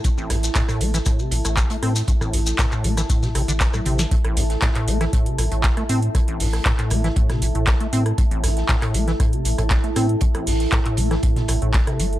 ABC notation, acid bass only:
X:1
M:4/4
L:1/16
Q:1/4=118
K:Am
V:1 name="Acid bass" clef=bass
A,, A,,, A,, z A,, A,, A, E, A,, C, A,, A,, z A, C z | A,, A,,, A,, z A,, A,, A, E, A,, C, C, D, z A,, C, E, | A,, A,,, A,, z A,, A,, A, E, A,, C, A,, A,, z A, C z | A,, A,,, A,, z A,, A,, A, E, A,, C, A,, A,, z A, C z |
A,, A,,, A,, z A,, A,, A, E, A,, C, A,, A,, z A, C z | A,, A,,, A,, z A,, A,, A, E, A,, C, A,, A,, z C, G, z |]